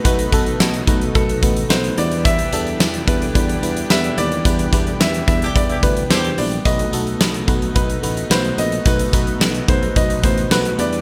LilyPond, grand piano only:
\new Staff \with { instrumentName = "Grand piano" } { \time 4/4 \key b \phrygian \tempo 4 = 109 b'2 a'4 c''8 d''8 | e''4. b'4. e''8 d''8~ | d''4 e''8 e''8 d''8 b'8 c''8 d''8 | dis''2 b'4 c''8 dis''8 |
b'4. c''8 dis''8 c''8 b'8 d''8 | }